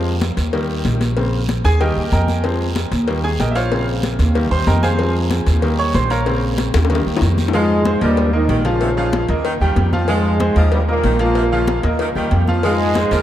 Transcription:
Already playing: F2 F3 G#3 C4
0.05 high conga
0.21 cowbell, high conga, short guiro
0.37 D#2, cowbell, high conga, short guiro
0.53 D#3 G3 A#3, cowbell, high conga, long guiro
0.69 high conga
0.85 A#1, cowbell, high conga, short guiro
1.01 cowbell, high conga, short guiro
1.17 C#3 A#3 C4, cowbell, high conga, long guiro
1.33 high conga
1.49 cowbell, high conga, short guiro
1.64 D#2 G#4 G#5, cowbell, high conga, short guiro
1.80 D#3 G3 A#3 G4 A#4 D#5 G5, cowbell, high conga, long guiro
1.96 D#2, high conga
2.12 F2 A#4 D#5 G5 A#5, cowbell, high conga, short guiro
2.28 high conga, short guiro
2.44 F3 G#3 C4, cowbell, high conga, long guiro
2.60 high conga
2.76 cowbell, high conga, short guiro
2.91 D#2, cowbell, high conga, short guiro
3.07 D#3 G3 A#3, cowbell, high conga, long guiro
3.24 G#4 G#5, high conga
3.39 A#1 G4 A#4 D#5 G5, cowbell, high conga, short guiro
3.51 E5
3.56 F4 C5 C#5 F5, cowbell, short guiro
3.71 C#3 A#3 C4, cowbell, high conga, long guiro
3.87 high conga
4.03 cowbell, high conga, short guiro
4.19 D#2, cowbell, high conga, short guiro
4.35 D#3 G3 A#3, cowbell, high conga, long guiro
4.51 D#2 C5 C6, high conga
4.67 F2 A#4 D#5 G5 A#5, cowbell, high conga, short guiro
4.83 G#4 C5 F5 G#5, high conga, short guiro
4.99 F3 G#3 C4, cowbell, long guiro
5.15 high conga
5.30 cowbell, high conga, short guiro
5.46 D#2, cowbell, high conga, short guiro
5.62 D#3 G3 A#3, cowbell, high conga, long guiro
5.79 C#5 C#6, high conga
5.94 A#1 C5 C6, cowbell, high conga, short guiro
6.10 A#4 C#5 F5 A#5, cowbell, short guiro
6.26 C#3 A#3 C4, cowbell, high conga, long guiro
6.43 high conga
6.58 cowbell, high conga, short guiro
6.74 D#2, cowbell, high bongo, high conga, short guiro
6.85 high bongo
6.90 D#3 G3 A#3, cowbell, high conga, long guiro
6.95 high bongo
7.06 D#2, high conga
7.17 low bongo
7.21 F2, cowbell, high conga, short guiro
7.38 high conga, short guiro
7.48 low bongo
7.53 G#2 F3 G#3 F4 F5, cowbell, high conga
7.70 high conga
7.85 G#3 G#4 C5, cowbell, high conga
8.01 D#2 G2 F3 G3 A#3 A#4 D#5, cowbell, high conga
8.17 cowbell, high conga
8.33 D#3 A#3 D#4 A#4 D#5, high conga
8.49 A#1 D#3, cowbell, high conga
8.65 C#3 F3 C#4 F4 F5, cowbell, high conga
8.81 C3, cowbell, high conga
8.97 C#3 F3 F4 F5, high conga
9.13 cowbell, high conga
9.29 D#2 A#3 A#4 D#5, cowbell, high conga
9.45 D#3, cowbell, high conga
9.61 D#2 D#3 G3 G4 G5, high conga
9.76 F2, cowbell, high conga
9.93 F3 F4 F5, high conga
10.08 G#2 F3 G#3 F4 F5, cowbell, high conga
10.25 high conga
10.40 G#3 G#4 C5, cowbell, high conga
10.56 D#2 F3 A#3 A#4 D#5, cowbell, high conga
10.72 G2 G3, cowbell, high conga
10.88 A#2 A#3 A#4 D#5, high conga
11.04 A#1 D#3, cowbell, high conga
11.19 A#2 F3 A#3 F4 F5, cowbell
11.35 C3, cowbell, high conga
11.52 C#3 F3 F4 F5, high conga
11.67 cowbell, high conga
11.83 D#2 A#3 A#4 D#5, cowbell, high conga
11.99 D#3, cowbell, high conga
12.15 D#2 D#3 G3 G4 G5, high conga
12.31 F2, cowbell, high conga
12.48 F3 F4 F5, high conga
12.63 G#2 F3 G#3 F4 F5, cowbell, long guiro
12.80 high conga
12.95 G#3 G#4 C5, cowbell, high conga, short guiro
13.11 D#2 F3 A#3 A#4 D#5, cowbell, high conga, short guiro

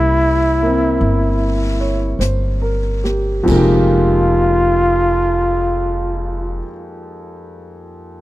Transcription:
Already playing: C2 G3 A#3 C#4 E4
0.62 A#3 C4
1.01 G1, brush sweep
1.81 C#5
2.19 G1 C5, brush sweep, snare, hi-hat pedal
2.62 A#4
3.04 G4, snare
3.43 F2 F3
3.47 F1 G#3 A#3 F4, kick, crash
3.53 D#4 G4

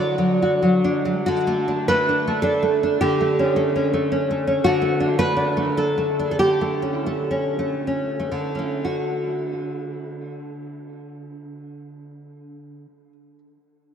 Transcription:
Already playing: D3 F#3 D4 F#4 D5
0.18 F#3
0.42 F#4
0.62 F#3
0.84 D4
1.05 F#3
1.26 D3 F#4
1.47 A3
1.68 D4
1.88 A3 B4
2.09 D4
2.27 A3
2.42 D4 A4
2.62 A3
2.83 D4
3.01 D3 G4
3.21 A3
3.39 C#4
3.56 A3
3.76 C#4
3.94 A3
4.12 C#4
4.31 A3
4.47 C#4
4.64 D3 F#4
4.82 A3
5.00 D4
5.19 A3 B4
5.37 D4
5.57 A3
5.77 D4 A4
5.98 A3
6.19 D4
6.31 A4
6.39 D3 G4
6.61 A3
6.82 C#4
7.06 A3
7.31 C#4
7.59 A3
7.87 C#4
8.20 A3
8.32 D3
8.55 A3 C#4
8.85 F#4

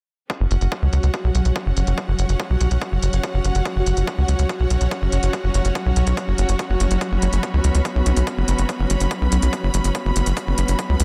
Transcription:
0.30 F#3 C#4 F#4, kick, closed hi-hat
0.39 F#1 F#4
0.46 F#5
0.51 F#1, closed hi-hat
0.61 F#1, closed hi-hat
0.72 C#5, kick, closed hi-hat
0.82 C#2
0.93 C#2, closed hi-hat
1.03 C#2, closed hi-hat
1.14 kick, closed hi-hat
1.24 B1
1.35 B1, closed hi-hat
1.45 B1, closed hi-hat
1.56 kick, closed hi-hat
1.66 F#1
1.77 F#1, closed hi-hat
1.87 F#1, closed hi-hat
1.98 kick, closed hi-hat
2.08 F#1
2.19 F#1, closed hi-hat
2.29 F#1, closed hi-hat
2.40 kick, closed hi-hat
2.50 B1
2.61 B1, closed hi-hat
2.71 B1, closed hi-hat
2.82 kick, closed hi-hat
2.92 F#1
3.03 F#1, closed hi-hat
3.13 F#1, closed hi-hat
3.23 kick, closed hi-hat
3.34 F#1
3.44 F#1, closed hi-hat
3.55 F#1, closed hi-hat
3.65 kick, closed hi-hat
3.76 F#1
3.86 F#1, closed hi-hat
3.97 F#1, closed hi-hat
4.07 kick, closed hi-hat
4.18 C#2
4.28 C#2, closed hi-hat
4.39 C#2, closed hi-hat
4.49 kick, closed hi-hat
4.60 B1
4.70 B1, closed hi-hat
4.81 B1, closed hi-hat
4.91 kick, closed hi-hat
5.02 F#1
5.12 F#1, closed hi-hat
5.23 F#1, closed hi-hat
5.33 kick, closed hi-hat
5.44 F#1
5.54 F#1, closed hi-hat
5.65 F#1, closed hi-hat
5.75 kick, closed hi-hat
5.86 B1
5.96 B1, closed hi-hat
6.07 B1, closed hi-hat
6.17 kick, closed hi-hat
6.28 F#1
6.38 F#1, closed hi-hat
6.49 F#1, closed hi-hat
6.59 kick, closed hi-hat
6.70 F#1
6.80 F#1, closed hi-hat
6.91 F#1, closed hi-hat
7.01 B3, kick, closed hi-hat
7.12 F#1
7.17 B5
7.22 F#1, closed hi-hat
7.33 F#1, closed hi-hat
7.43 kick, closed hi-hat
7.54 C#2
7.64 C#2, closed hi-hat
7.75 C#2, closed hi-hat
7.85 kick, closed hi-hat
7.96 B1
8.06 B1, closed hi-hat
8.16 B1, closed hi-hat
8.27 kick, closed hi-hat
8.38 F#1
8.48 F#1, closed hi-hat
8.58 F#1, closed hi-hat
8.69 kick, closed hi-hat
8.79 F#1
8.90 F#1, closed hi-hat
9.00 F#1, closed hi-hat
9.11 kick, closed hi-hat
9.21 B1
9.32 B1, closed hi-hat
9.42 B1, closed hi-hat
9.53 kick, closed hi-hat
9.63 F#1
9.74 F#1, closed hi-hat
9.84 F#1, closed hi-hat
9.95 kick, closed hi-hat
10.05 F#1
10.16 F#1, closed hi-hat
10.26 F#1, closed hi-hat
10.37 kick, closed hi-hat
10.47 F#1
10.58 F#1, closed hi-hat
10.68 F#1, closed hi-hat
10.79 kick, closed hi-hat
10.89 C#2
11.00 C#2, closed hi-hat

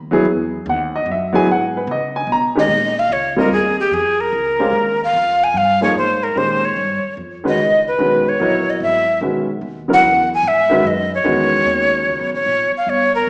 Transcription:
Already playing: D#2
0.11 F#3 B3 E4 G#4
0.25 E2
0.66 D#2 F#5
0.96 D#5
1.06 F#2
1.11 E5
1.33 F#3 B3 E4 G#4 G#5
1.47 G#2
1.51 F#5
1.77 B4
1.87 C#3
1.91 D#5
2.16 G#5
2.27 B2
2.32 A#5
2.55 D#3 G#3 C#4 G4 D#5
2.69 A#2
2.99 F5
3.09 C#2 C#5
3.36 G3 C4 F4 A#4 D#5
3.51 D#2 G#4
3.80 G4
3.91 F2 G#4
4.21 A#4
4.32 C#2
4.59 G#3 C#4 G4 C5 F5
4.73 D#2
5.04 F5
5.13 F2
5.44 G#5
5.54 G2 F5
5.81 F3 A#3 D#4 G#4 C#5
5.95 G#2 C5
6.23 A#4
6.35 A#2 D#3 G#3 C#4 G4 C5
6.65 C#5
6.76 G2
7.17 F2
7.44 D#3 G#3 C#4 F#4 B4
7.48 D#5
7.59 C#2
7.88 B4
7.98 B1 D#3 G#3 C#4 F#4 B4
8.29 C#5
8.39 A#1 F#3 B3 E4 A#4 D#5
8.70 D#5
8.80 G#1 E5
9.21 B1 D#3 G#3 C#4 F#4 B4
9.61 D#2
9.88 C#3 F#3 B3 E4 A#4
9.93 F#5
10.02 E2
10.35 G#5
10.43 G#2
10.48 E5
10.70 D#3 G#3 C#4 F#4 B4
10.83 F#2 D#5
11.15 C#5
11.24 E2 D#3 G#3 C#4 F#4 B4
11.65 D#2
12.05 C#2
12.19 B1
12.32 G#1 C#5
12.46 A#1
12.72 muted upright bass stroke
12.77 F5
12.86 G1 C#5
13.15 A#4

